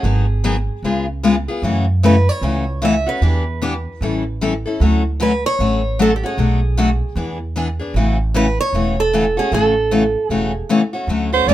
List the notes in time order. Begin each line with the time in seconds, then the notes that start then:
Already playing: G#4
0.03 G#1 D#3 F#3 B3 D#4 G#4
0.44 D#3 F#3 B3 D#4 G#4
0.83 C#2 C#3 G#3 B3 F4 G#4
1.23 C#3 G#3 B3 F4 G#4
1.48 B3 F4 G#4
1.62 F#2 C#3 E3 A3 C#4 F#4
2.03 C#3 E3 A3 C#4 F#4 B4
2.29 C#5
2.41 C#2 C#3 E3 A3 C#4 F#4
2.82 C#3 E3 A3 C#4 F#4 E5
3.06 A3 C#4 F#4 B4
3.21 E2 E3 B3 D4 G4
3.62 E3 B3 D4 G4
4.01 A1 E3 G3 C#4 E4 A4
4.41 E3 G3 C#4 E4 A4
4.66 C#4 E4 A4
4.80 D2 D3 F#3 A3 C#4 F#4
5.20 D3 F#3 A3 C#4 F#4 B4
5.46 C#5
5.59 A1 D3 F#3 A3 C#4 F#4
5.99 D3 F#3 A3 C#4 F#4 A4
6.16 G4
6.23 A3 C#4 F#4 G#4
6.37 B1 B2 F#3 A3 D4 F#4
6.77 B2 F#3 A3 D4 F#4
7.15 E2 E3 B3 D4 G#4
7.56 E3 B3 D4 G#4
7.79 B3 D4 G#4
7.94 A1 C#3 E3 A3 C#4 F#4
8.34 C#3 E3 A3 C#4 F#4 B4
8.61 C#5
8.73 E1 C#3 E3 A3 C#4 F#4
9.00 A4
9.13 C#3 E3 A3 C#4 F#4
9.37 A3 C#4 F#4 G#4
9.52 A1 C#3 E3 A3 C#4 F#4 A4
9.91 C#3 E3 A3 C#4 F#4
10.28 E1 C#3 E3 A3 C#4 F#4 G#4
10.69 C#3 E3 A3 C#4 F#4
10.93 A3 C#4 F#4
11.07 D2 D3 F#3 A3 C#4 F#4
11.32 A3 C#4 F#4 C5
11.47 E2 D3 F#3 A3 C#4 F#4 D5